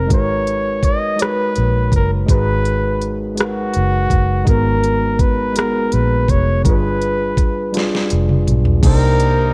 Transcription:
Already playing: F1 C3 C4 D#4 A#4 C5
0.07 G#3 D#4 F#4, kick, closed hi-hat
0.11 G#1 A#4 B4 C#5
0.47 closed hi-hat
0.83 D#5, kick, closed hi-hat
1.16 G#3 D#4 F#4 B4, closed hi-hat
1.21 B4 C#5, cross-stick
1.56 A#1, closed hi-hat
1.92 F#1 A#4, kick, closed hi-hat
2.26 G#1 G#3 D#4 F#4, kick, closed hi-hat
2.30 G#4 B4
2.65 closed hi-hat
3.01 closed hi-hat
3.35 G#3 D#4 F#4, closed hi-hat
3.39 F#4 A#4 B4, cross-stick
3.74 F#1, closed hi-hat
4.10 F#1, kick, closed hi-hat
4.44 G#1 G#3 D#4 F#4 A#4, kick, closed hi-hat
4.48 B3 A#4
4.84 closed hi-hat
5.19 B4, kick, closed hi-hat
5.53 G#3 D#4 F#4, closed hi-hat
5.57 B3 G#4 A#4, cross-stick
5.92 A#1 B4, closed hi-hat
6.28 F1 C#5, kick, closed hi-hat
6.64 G1 G3 D4 F4 B4, kick, closed hi-hat
6.68 G#4 B4
7.02 closed hi-hat
7.37 kick, closed hi-hat
7.72 G3 D4 F4 G#4, closed hi-hat
7.77 D5, snare
7.95 snare
8.10 F1, closed hi-hat
8.29 mid tom
8.47 B1, closed hi-hat, mid tom
8.65 floor tom
8.81 C2 A#2 C3 G3 A#3 D4 D#4 A#4, kick, closed hi-hat, crash
8.85 D#4 C5
9.20 closed hi-hat

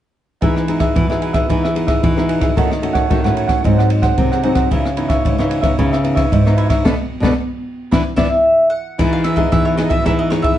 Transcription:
0.41 E3 B3 D#4 G#4 B4 E5, kick, ride
0.56 muted cavaquinho stroke, cross-stick
0.68 B3 D#4 G#4 B4 E5, ride
0.79 G#4 B4 E5, kick, cross-stick, ride
0.96 B2 E3, kick, ride
1.10 E3 B3 D#4 G#4 B4 E5, cross-stick
1.22 D#4 G#4 B4 E5, ride
1.33 G#4 B4 E5, kick, cross-stick, ride
1.49 E3 B3 D#4 G#4 B4 E5, kick, ride
1.63 G#4 B4 E5, cross-stick
1.75 B3 D#4 G#4, muted cavaquinho stroke, ride
1.87 G#4 B4 E5, kick, cross-stick, ride
2.02 B2 E3, kick, ride
2.16 B3 D#4 G#4 B4 E5, cross-stick
2.28 D#4 G#4 B4 E5, ride
2.41 G#4 B4 E5, kick, cross-stick, ride
2.56 D#3 A3 C#4 D#4 F#4 A4 C#5 F#5, kick, ride
2.71 muted cavaquinho stroke, cross-stick
2.82 A3 C#4 D#4 F#4 A4 C#5 F#5, ride
2.93 A4 C#5 F#5, kick, cross-stick, ride
3.10 D#3 A3 C#4 F#4, kick, ride
3.24 A2 A3 C#4 F#4 A4 C#5 F#5, cross-stick
3.35 D#4 A4 C#5 F#5, ride
3.47 A4 C#5 F#5, kick, cross-stick, ride
3.64 G#2 F#3 C4 D#4 G#4 C5 F#5, kick, ride
3.78 G#4 C5 F#5, cross-stick
3.90 muted cavaquinho stroke, ride
4.02 G#4 C5 F#5, kick, cross-stick, ride
4.17 C3 D#3 F#3 C4 D#4, kick, ride
4.31 G#4 C5 F#5, cross-stick
4.43 F#3 C4 D#4 G#4 C5 F#5, ride
4.55 G#4 C5 F#5, kick, cross-stick, ride
4.71 C#3 E3 B3 D#4 E4 B4 C#5 E5, kick, ride
4.85 muted cavaquinho stroke, cross-stick
4.96 E3 B3 D#4 E4 B4 C#5 E5, ride
5.08 B4 C#5 E5, kick, cross-stick, ride
5.25 G#2 C#3, kick, ride
5.38 C#3 E3 B3 D#4 B4 C#5 E5, cross-stick
5.49 E4 B4 C#5 E5, ride
5.61 E3 B3 D#4 B4 C#5 E5, kick, cross-stick, ride
5.77 C#3 E3 B3 D#4 E4 B4 C#5 E5, kick, ride
5.92 B4 C#5 E5, cross-stick
6.03 E3 B3 D#4, muted cavaquinho stroke, ride
6.15 B4 C#5 E5, kick, cross-stick, ride
6.31 G#2, kick, ride
6.44 E3 B3 D#4 B4 C#5 E5, cross-stick
6.57 E4 B4 C#5 E5, ride
6.68 B4 C#5 E5, kick, cross-stick, ride
6.84 B2 A3 B3 D4 A4 B4 D5, kick, snare
7.20 B2 A3 B3 D4 A4 B4 D5, kick, snare
7.91 E3 B3 D4 E4 B4 D5 E5, kick, snare
8.16 E3 B3 D4 E4 B4 D5 E5, kick, snare
8.70 F#5
8.98 E3 B3 D#4 G#4 B4 E5, kick, cross-stick, crash
9.13 F5, muted cavaquinho stroke
9.24 D#4 G#4 B4 E5, cross-stick, ride
9.36 B3 D#4 G#4 B4 D#5 E5, kick, ride
9.52 B2 E3 E5, kick, cross-stick, ride
9.65 G#4 B4 C#5 E5
9.77 B3 D#4 G#4 B4 D#5, cross-stick, ride
9.89 G#4 B4 E5, kick, ride
10.04 E3 B3 D#4 G#4 B4 E5, kick, cross-stick, ride
10.19 G#4 B4 D#5 E5
10.30 B3 D#4 G#4 C#5, muted cavaquinho stroke, cross-stick, ride
10.42 G#4 B4 E5, kick, ride

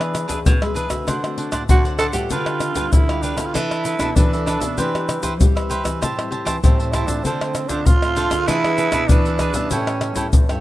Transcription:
Already playing: E3 B3 D4 G#4 B4 E5
0.01 pandeiro, tamborim, shaker
0.15 pandeiro, tamborim, shaker
0.28 E2 B3 D4 G#4 B4 E5, pandeiro, shaker, surdo
0.46 B2, pandeiro, shaker, surdo
0.61 G#3 B3 D4 G#4 B4 E5, pandeiro, tamborim, shaker
0.74 E3 D4 G#4 B4 E5, pandeiro, shaker
0.90 D3 A3 C4 F#4 G#4 B4 E5, pandeiro, tamborim, shaker, surdo
1.07 D3 D4 C5 D5 F#5, pandeiro, tamborim, shaker, surdo
1.24 A3 C4 F#4, pandeiro, tamborim, shaker
1.37 D4 C5 D5 F#5, pandeiro
1.51 A2 D4 C5 D5 F#5, pandeiro, tamborim, shaker, surdo
1.69 A2 D3 A3 C4 D4 F#4 C5 D5 F#5, pandeiro, shaker, surdo
1.85 C5 D5 F#5, pandeiro, shaker
1.98 D4 A4 C5 D5 F#5, pandeiro, tamborim, shaker, surdo
2.13 A2 G3 B3 F4 G4 C5 D5 F#5, pandeiro, shaker, surdo
2.30 D3 D4 F4 G4 B4 F5, pandeiro, shaker, surdo
2.46 pandeiro, tamborim, shaker
2.60 pandeiro, tamborim, shaker
2.75 D3 G3 B3 D4 F4 G4 B4 F5, pandeiro, shaker, surdo
2.92 D3 E4, pandeiro, shaker, surdo
3.09 G3 B3 F4 G4 B4 F5, pandeiro, tamborim, shaker
3.22 D4 G4 B4 F5, pandeiro, shaker
3.37 D3 B3 D4 F4 G4 A4 B4 F5, pandeiro, tamborim, shaker, surdo
3.41 E4
3.45 F4
3.53 E3 D4 E4 A4 B4 E5, pandeiro, tamborim, shaker, surdo
3.71 pandeiro, tamborim, shaker
3.84 B3 D4 A4 B4 E5, pandeiro, shaker
3.99 B2 D4 A4 B4 E5, pandeiro, tamborim, shaker, surdo
4.15 B2 E3 D4 A4 B4 E5, pandeiro, shaker, surdo
4.33 B3 D4 A4 B4 E5, pandeiro, shaker
4.46 D4 A4 B4 E5, pandeiro, tamborim, shaker
4.60 B2 A4 B4 E5, pandeiro, shaker, surdo
4.77 E3 B3 C4 G4 B4 C5 E5, pandeiro, shaker, surdo
4.94 B3 C4 G4, pandeiro, tamborim, shaker
5.09 pandeiro, tamborim, shaker
5.23 E3 G4 B4 C5 E5, pandeiro, shaker, surdo
5.40 E3 G3 B3 C4 G4, pandeiro, shaker, surdo
5.55 B4 C5 E5, pandeiro, tamborim, shaker
5.70 G4 B4 C5 E5, pandeiro, shaker
5.84 E3 G3 C4 E4 B4 C5 E5, pandeiro, tamborim, shaker, surdo
6.01 A2 G4 C5 E5 A5, pandeiro, tamborim, shaker, surdo
6.19 G3 C4 E4, pandeiro, tamborim, shaker
6.31 G4 C5 E5 A5, pandeiro
6.45 E3 G4 C5 E5 A5, pandeiro, tamborim, shaker, surdo
6.63 A2 E3 G3 C4 E4 G4 C5 E5 A5, pandeiro, shaker, surdo
6.79 C5 E5 A5, pandeiro, shaker
6.92 E4 G4 C5 E5 A5, pandeiro, tamborim, shaker, surdo
7.07 A2 A3 C4 D4 F4 C5 E5 A5, pandeiro, shaker, surdo
7.23 D3 C4 D4 A4 C5 F5, pandeiro, shaker, surdo
7.41 pandeiro, tamborim, shaker
7.55 pandeiro, tamborim, shaker
7.68 D3 A3 C4 D4 F4 A4 C5 F5, pandeiro, shaker, surdo
7.86 A2 F4, pandeiro, shaker, surdo
8.02 A3 C4 F4 A4 C5 F5, pandeiro, tamborim, shaker
8.16 D4 A4 C5 F5, pandeiro, shaker
8.31 D3 B3 D4 G#4 A4 C5 F5, pandeiro, tamborim, shaker, surdo
8.47 E3 D4 E4 G#4 B4 E5, pandeiro, tamborim, shaker, surdo
8.64 B3 D4 G#4, pandeiro, tamborim, shaker
8.78 D4 G#4 B4 E5, pandeiro, shaker
8.92 B2 D4 G#4 B4 E5, pandeiro, tamborim, shaker, surdo
9.08 B2 E3 B3 D4 G#4 B4, pandeiro, shaker, surdo
9.12 E5
9.26 G#4 B4 E5, pandeiro, shaker
9.39 D4 G#4 B4 E5, pandeiro, tamborim, shaker, surdo
9.54 B2 G3 C#4 E4 G#4 B4 E5, pandeiro, shaker, surdo
9.70 A2 C#4 E4 A4 C#5 G5, pandeiro, shaker, surdo
9.87 pandeiro, tamborim, shaker
10.01 pandeiro, tamborim
10.15 A2 G3 C#4 E4 A4 C#5 G5, pandeiro, shaker, surdo
10.33 E2 E3, pandeiro, shaker, surdo
10.49 G2 G3 C#4 E4 A4 C#5 G5, pandeiro, tamborim, shaker

